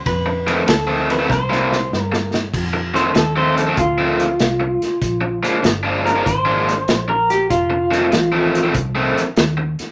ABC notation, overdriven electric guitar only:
X:1
M:4/4
L:1/16
Q:"Swing" 1/4=97
K:Fmix
V:1 name="Overdriven electric guitar" clef=bass
z2 [F,,E,A,C] z2 [F,,E,A,C] z [F,,E,A,C] z [C,G,B,=E] z6 | z2 [F,,E,A,C] z2 [F,,E,A,C] z [F,,E,A,C] z [F,,E,A,C] z6 | z2 [B,,F,_A,D] z2 [B,,F,A,D] z [B,,F,A,D] z [B,,F,A,D] z6 | z2 [F,,E,A,C] z2 [F,,E,A,C] z [F,,E,A,C] z [F,,E,A,C] z6 |]